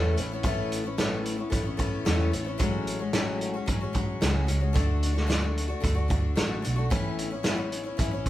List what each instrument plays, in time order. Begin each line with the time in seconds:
Already playing: picked electric bass E2, twelve-string acoustic guitar A2 A3 B3 C#4 E4
0.17 picked electric bass A1, twelve-string acoustic guitar A3 B3 C#4 E4, closed hi-hat
0.32 twelve-string acoustic guitar B3 C#4 E4
0.43 picked electric bass A1, twelve-string acoustic guitar A2 A3 B3 C#4 E4, kick, closed hi-hat
0.72 closed hi-hat
0.84 twelve-string acoustic guitar B3 C#4 E4
0.98 twelve-string acoustic guitar A2 A3 B3 C#4 E4, snare, closed hi-hat
1.25 closed hi-hat
1.37 twelve-string acoustic guitar B3 C#4 E4
1.50 picked electric bass A1, twelve-string acoustic guitar A3 B3 C#4 E4, kick, closed hi-hat
1.63 twelve-string acoustic guitar B3 C#4 E4
1.77 twelve-string acoustic guitar A3 B3 C#4 E4, kick, closed hi-hat
2.05 picked electric bass E2, twelve-string acoustic guitar A2 A3 B3 C#4 E4, snare, closed hi-hat
2.32 picked electric bass A1, twelve-string acoustic guitar A3 B3 C#4 E4, closed hi-hat
2.45 twelve-string acoustic guitar B3 C#4 E4
2.58 picked electric bass A1, twelve-string acoustic guitar A2 F#3 G#3 C#4 F#4, kick, closed hi-hat
2.87 closed hi-hat
2.99 twelve-string acoustic guitar G#3 C#4 F#4
3.13 twelve-string acoustic guitar A2 F#3 G#3 C#4 F#4, snare, closed hi-hat
3.41 closed hi-hat
3.54 twelve-string acoustic guitar G#3 C#4 F#4
3.66 picked electric bass A1, twelve-string acoustic guitar F#3 G#3 C#4 F#4, kick, closed hi-hat
3.81 twelve-string acoustic guitar G#3 C#4 F#4
3.93 twelve-string acoustic guitar F#3 G#3 C#4 F#4, kick, closed hi-hat
4.21 picked electric bass C#2, twelve-string acoustic guitar A2 F#3 G#3 C#4 F#4, snare, closed hi-hat
4.47 picked electric bass C#2, twelve-string acoustic guitar F#3 G#3 C#4 F#4, closed hi-hat
4.60 twelve-string acoustic guitar G#3 C#4 F#4
4.73 picked electric bass D2, twelve-string acoustic guitar D3 A3 D4 F#4, kick, closed hi-hat
5.03 closed hi-hat
5.13 twelve-string acoustic guitar A3 D4 F#4, snare
5.27 twelve-string acoustic guitar D3 A3 D4 F#4, snare, closed hi-hat
5.41 twelve-string acoustic guitar A3 D4 F#4
5.57 closed hi-hat
5.68 twelve-string acoustic guitar A3 D4 F#4
5.80 picked electric bass D2, twelve-string acoustic guitar D3 A3 D4 F#4, kick, closed hi-hat
5.95 twelve-string acoustic guitar A3 D4 F#4
6.08 twelve-string acoustic guitar D3 A3 D4 F#4, kick, closed hi-hat
6.35 picked electric bass A1, twelve-string acoustic guitar D3 A3 D4 F#4, snare, closed hi-hat
6.62 picked electric bass B1, twelve-string acoustic guitar D3 A3 D4 F#4, closed hi-hat
6.76 twelve-string acoustic guitar A3 D4 F#4
6.90 picked electric bass A1, twelve-string acoustic guitar A2 E3 B3 C#4 E4, kick, closed hi-hat
7.19 closed hi-hat
7.30 twelve-string acoustic guitar B3 C#4 E4
7.43 twelve-string acoustic guitar A2 E3 B3 C#4 E4, snare, closed hi-hat
7.56 twelve-string acoustic guitar B3 C#4 E4
7.72 closed hi-hat
7.83 twelve-string acoustic guitar B3 C#4 E4
7.97 picked electric bass A1, twelve-string acoustic guitar E3 B3 C#4 E4, kick, closed hi-hat
8.11 twelve-string acoustic guitar B3 C#4 E4
8.26 twelve-string acoustic guitar E3, kick, closed hi-hat